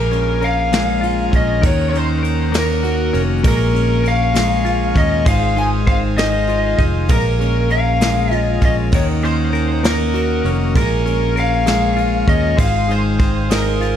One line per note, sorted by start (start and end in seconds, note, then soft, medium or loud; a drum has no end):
0.00 1.29 A#1 loud
0.00 1.63 A#2 medium
0.00 0.10 G#3 medium
0.00 0.41 A#4 medium
0.00 0.45 A#4 medium
0.00 5.22 A#4 medium
0.00 1.61 F5 medium
0.00 1.61 G#5 medium
0.00 3.40 A#5 medium
0.11 0.71 G#3 medium
0.11 1.31 C#4 medium
0.11 ride soft
0.41 2.24 C#4 medium
0.41 1.62 A#4 medium
0.41 1.36 F5 loud
0.41 ride soft
0.72 1.69 G#3 medium
0.72 1.32 G#3 medium
0.72 snare loud
0.72 ride medium
1.01 1.68 F4 medium
1.01 1.69 F4 medium
1.01 ride soft
1.32 1.61 A#1 loud
1.32 1.69 G#3 medium
1.32 1.92 C#4 medium
1.32 kick medium
1.32 ride soft
1.36 1.65 D#5 medium
1.61 3.10 D#2 loud
1.61 3.43 D#3 medium
1.61 3.44 D#3 medium
1.61 2.22 A#4 medium
1.61 3.43 D#5 medium
1.61 3.43 F#5 medium
1.61 kick loud
1.61 ride medium
1.66 1.86 C#5 medium
1.90 3.13 C#4 medium
1.90 1.95 C#5 medium
1.94 2.54 A#3 medium
1.94 2.57 C5 loud
1.94 ride soft
2.23 3.51 C#4 medium
2.23 3.42 A#4 medium
2.23 ride soft
2.52 3.50 A#3 medium
2.52 3.14 A#3 medium
2.52 snare loud
2.52 ride medium
2.58 3.20 A#4 loud
2.83 3.50 F#4 medium
2.83 ride soft
3.13 3.43 F1 medium
3.13 3.44 A#3 medium
3.13 3.50 C#4 medium
3.13 ride soft
3.43 4.92 A#1 loud
3.43 5.26 A#2 medium
3.43 3.74 G#3 loud
3.43 4.02 A#4 medium
3.43 8.89 F5 medium
3.43 8.89 G#5 medium
3.43 5.25 C#6 medium
3.43 kick loud
3.43 ride medium
3.47 4.08 A#4 medium
3.74 4.34 G#3 medium
3.74 4.93 C#4 medium
3.74 ride soft
4.04 5.33 C#4 medium
4.04 5.25 A#4 medium
4.04 4.97 F5 loud
4.04 ride soft
4.34 4.95 G#3 medium
4.34 5.24 G#3 medium
4.34 snare loud
4.34 ride medium
4.65 6.47 F4 medium
4.65 5.59 F4 medium
4.65 ride soft
4.94 5.25 D#2 medium
4.94 5.57 G#3 medium
4.94 5.32 C#4 medium
4.94 5.28 D#5 medium
4.94 kick medium
4.94 ride soft
5.25 6.75 G#1 loud
5.25 7.10 D#3 medium
5.25 7.09 G#3 medium
5.25 5.85 C5 medium
5.25 7.08 C5 medium
5.25 5.59 F5 loud
5.25 7.09 D#6 medium
5.25 kick loud
5.25 ride medium
5.56 6.18 G#3 medium
5.56 6.16 D#4 medium
5.56 5.67 G#5 loud
5.56 ride soft
5.87 7.16 C4 medium
5.87 7.10 C5 medium
5.87 5.96 F5 medium
5.87 kick loud
5.87 ride soft
6.18 6.78 G#3 medium
6.18 6.78 D#4 medium
6.18 6.83 D#5 loud
6.18 snare loud
6.18 ride medium
6.48 7.16 F4 medium
6.48 ride soft
6.78 7.08 F1 medium
6.78 7.08 G#3 medium
6.78 7.16 D#4 medium
6.78 kick medium
6.78 ride soft
7.09 8.58 A#1 loud
7.09 8.92 A#2 medium
7.09 7.38 G#3 medium
7.09 12.54 A#4 medium
7.09 7.71 A#4 medium
7.09 7.68 A#4 medium
7.09 10.71 A#5 medium
7.09 kick loud
7.09 ride medium
7.39 8.00 G#3 medium
7.39 8.61 C#4 medium
7.39 ride soft
7.70 9.52 C#4 medium
7.70 8.94 A#4 medium
7.70 8.34 F5 loud
7.70 ride soft
8.01 8.60 G#3 medium
8.01 8.99 G#3 medium
8.01 snare loud
8.01 ride medium
8.31 8.99 F4 medium
8.31 8.59 D#5 loud
8.31 ride soft
8.61 8.91 A#1 medium
8.61 8.98 G#3 medium
8.61 9.23 C#4 medium
8.61 8.73 D#5 medium
8.61 kick medium
8.61 ride soft
8.92 10.41 D#2 loud
8.92 10.75 D#3 loud
8.92 10.76 D#3 medium
8.92 9.53 A#4 medium
8.92 9.03 C#5 medium
8.92 10.73 D#5 medium
8.92 10.73 F#5 medium
8.92 kick loud
8.92 ride medium
9.22 9.84 A#3 medium
9.22 10.45 C#4 medium
9.22 9.85 C5 medium
9.22 ride soft
9.53 10.81 C#4 medium
9.53 10.75 A#4 medium
9.53 ride soft
9.84 10.81 A#3 medium
9.84 10.44 A#3 medium
9.84 10.49 A#4 medium
9.84 snare loud
9.84 ride medium
10.14 10.81 F#4 medium
10.14 10.82 F#4 medium
10.14 ride soft
10.44 10.73 F1 loud
10.44 10.75 A#3 medium
10.44 10.82 C#4 medium
10.44 ride soft
10.75 12.24 A#1 loud
10.75 12.58 A#2 medium
10.75 11.06 G#3 medium
10.75 11.35 A#4 medium
10.75 11.33 A#4 loud
10.75 13.96 F5 medium
10.75 13.96 G#5 medium
10.75 12.57 C#6 medium
10.75 kick loud
10.75 ride medium
11.06 11.66 G#3 medium
11.06 12.26 C#4 medium
11.06 ride soft
11.36 12.65 C#4 medium
11.36 12.57 A#4 medium
11.36 12.29 F5 loud
11.36 ride soft
11.66 12.56 G#3 medium
11.66 12.27 G#3 medium
11.66 snare loud
11.66 ride medium
11.96 12.92 F4 medium
11.96 13.80 F4 medium
11.96 ride soft
12.27 12.56 D#2 medium
12.27 12.89 G#3 medium
12.27 12.64 C#4 medium
12.27 12.60 D#5 medium
12.27 kick medium
12.27 ride soft
12.57 13.96 G#1 loud
12.57 13.96 D#3 medium
12.57 13.96 G#3 medium
12.57 13.18 C5 medium
12.57 13.96 C5 medium
12.57 12.91 F5 medium
12.57 13.96 D#6 medium
12.57 kick loud
12.57 ride medium
12.89 13.50 G#3 medium
12.89 13.49 D#4 medium
12.89 13.52 C5 medium
12.89 ride soft
13.19 13.96 C4 medium
13.19 13.96 C5 medium
13.19 kick loud
13.19 ride soft
13.50 13.96 G#3 medium
13.50 13.96 D#4 medium
13.50 13.96 A#4 medium
13.50 snare loud
13.50 ride medium
13.81 13.96 F4 medium
13.81 ride soft